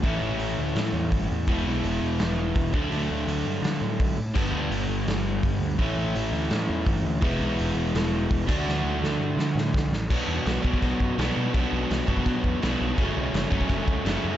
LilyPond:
<<
  \new Staff \with { instrumentName = "Overdriven electric guitar" } { \clef bass \time 4/4 \key b \minor \tempo 4 = 167 <a, e a cis' e'>1 | <e gis b e'>2.~ <e gis b e'>8 <d fis a d'>8~ | <d fis a d'>2.~ <d fis a d'>8 r8 | <g, d g b d'>1 |
<a, e a cis' e'>1 | <e gis b e'>2.~ <e gis b e'>8 <d a d' fis'>8~ | <d a d' fis'>2.~ <d a d' fis'>8 r8 | <b, fis b d'>4. <b, fis b d'>4. <b, fis b d'>4 |
<b, fis b d'>4. <b, fis b d'>4. <b, fis b d'>4 | <fis, cis fis a cis'>4. <fis, cis fis a cis'>4. <fis, cis fis a cis'>4 | }
  \new Staff \with { instrumentName = "Picked electric bass" } { \clef bass \time 4/4 \key b \minor a,,8 a,,8 a,,8 d,8 a,8 e,8 g,,8 e,8 | e,,8 b,,8 e,,8 e,,8 e,,4 e,,8 d,8 | d,8 d,8 d,8 g,8 d8 a,8 b,,8 a,8 | g,,8 d,8 g,,8 g,,8 g,,4 g,,8 d,8 |
a,,8 a,,8 a,,8 d,8 a,8 e,8 g,,8 d,8 | e,,8 b,,8 e,,8 e,,8 e,,4 e,,8 d,8 | d,8 d,8 d,8 g,8 d8 a,8 b,,8 a,,8 | b,,8 e,8 b,,8 b,,8 b,,8 fis,8 b,,8 b,8 |
b,,8 b,,8 b,,8 fis,8 b,8 e,8 b,,8 b,,8 | fis,,8 b,,8 fis,,8 fis,,8 fis,,8 cis,8 fis,,8 fis,8 | }
  \new DrumStaff \with { instrumentName = "Drums" } \drummode { \time 4/4 <hho bd>4 hho4 <hho sn>4 <hho bd>4 | <hho bd>4 hho4 <hho sn>4 <hho bd>8 bd8 | hho4 hho4 <hho sn>4 <hho bd>4 | <cymc bd>4 hho4 <hho sn>4 <hho bd>4 |
<hho bd>4 hho4 <hho sn>4 <hho bd>4 | <hho bd>4 hho4 <hho sn>4 <hho bd>8 <cymc bd>8 | sn4 sn4 sn8 sn8 <bd sn>8 sn8 | <cymc bd>4 <cymc sn>8 bd16 bd16 <cymc bd>8 bd8 <cymc sn>4 |
<cymc bd>4 <cymc sn>8 bd16 bd16 <cymc bd>8 bd8 <cymc sn>4 | <cymc bd>4 <cymc sn>8 bd16 bd16 <cymc bd>8 bd8 <cymc sn>4 | }
>>